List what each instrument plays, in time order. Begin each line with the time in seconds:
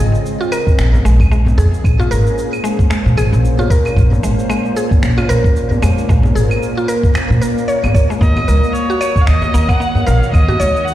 Already playing: synth drone A#2 A#3 C#4 F4 G#4 C5 D#5
0.00 synth pluck G#4
0.15 shaker
0.26 shaker
0.41 synth pluck F4, shaker
0.52 synth pluck A#4, claves, shaker
0.67 kick, shaker
0.78 upright bass A#1, finger snap, djembe tone, shaker
0.94 djembe slap, djembe tone, shaker
1.05 upright bass A#1, synth pluck G#3, shaker
1.20 kick, claves, shaker
1.31 synth pluck G#3, shaker
1.46 djembe tone, djembe bass, shaker
1.58 upright bass F2, synth pluck G#4, djembe slap, djembe tone, shaker
1.74 shaker
1.84 upright bass A#1, kick, claves, shaker
1.99 synth pluck F4, djembe slap, djembe tone, djembe bass, shaker
2.11 upright bass G#1, synth pluck A#4, shaker
2.27 shaker
2.38 shaker
2.53 claves, shaker
2.64 synth pluck G#3, shaker
2.79 kick, shaker
2.90 synth pluck G#3, finger snap, djembe slap, shaker
3.06 upright bass A#2, shaker
3.17 upright bass G#1, synth pluck G#4, claves, shaker
3.33 upright bass A#1, shaker
3.45 shaker
3.59 synth pluck F4, djembe tone, shaker
3.70 synth pluck A#4, kick, shaker
3.85 djembe slap, claves, shaker
3.97 upright bass A#1, kick, shaker
4.11 synth drone A#4, djembe slap, djembe bass, shaker
4.23 upright bass G#1, synth pluck G#3, shaker
4.39 shaker
4.50 synth pluck G#3, claves, shaker
4.65 shaker
4.76 synth pluck G#4, shaker
4.91 kick, shaker
5.02 upright bass A#1, finger snap, djembe tone, shaker
5.18 synth pluck F4, djembe slap, djembe tone, claves, shaker
5.29 upright bass A#1, synth pluck A#4, shaker
5.44 kick, shaker
5.56 shaker
5.71 djembe tone, djembe bass, shaker
5.82 upright bass F2, synth pluck G#3, djembe slap, djembe tone, claves, shaker
5.98 shaker
6.09 upright bass A#1, synth pluck G#3, kick, shaker
6.23 djembe slap, djembe tone, djembe bass, shaker
6.35 upright bass G#1, synth pluck G#4, djembe tone, shaker
6.51 claves, shaker
6.63 shaker
6.77 synth pluck F4, shaker
6.88 synth pluck A#4, shaker
7.03 kick, shaker
7.14 finger snap, djembe slap, claves, shaker
7.30 upright bass A#2, shaker
7.42 synth pluck A#4, shaker
7.58 shaker
7.68 synth pluck C#5, shaker
7.83 upright bass G#1, djembe tone, claves, shaker
7.94 synth pluck C#5, kick, shaker
8.10 synth pluck G#3, djembe slap, shaker
8.21 upright bass D#2, synth drone D#3, synth pluck A#3, kamancheh D#5, kick, shaker
8.36 djembe slap, djembe bass, claves, shaker
8.48 upright bass C#2, synth pluck A#4, shaker
8.56 synth drone C#5
8.64 shaker
8.73 kamancheh C#5, shaker
8.90 synth pluck F#4, shaker
9.01 synth pluck C#5, claves, shaker
9.12 synth drone F#4, kick
9.17 shaker
9.21 kamancheh F5
9.26 upright bass D#2, kamancheh D#5, finger snap, djembe tone, shaker
9.42 djembe slap, djembe tone, shaker
9.54 upright bass D#2, synth pluck A#3, shaker
9.68 synth pluck A#3, kamancheh F#5, kick, claves, shaker
9.80 synth pluck A#3, shaker
9.95 djembe tone, djembe bass, shaker
10.06 upright bass A#1, synth pluck A#4, kamancheh F5, djembe slap, djembe tone, shaker
10.23 shaker
10.32 upright bass D#2, kamancheh D#5, kick, claves, shaker
10.48 synth pluck F#4, djembe slap, djembe tone, djembe bass, shaker
10.60 upright bass C#2, synth pluck C#5, shaker
10.76 shaker
10.85 kamancheh F#5, shaker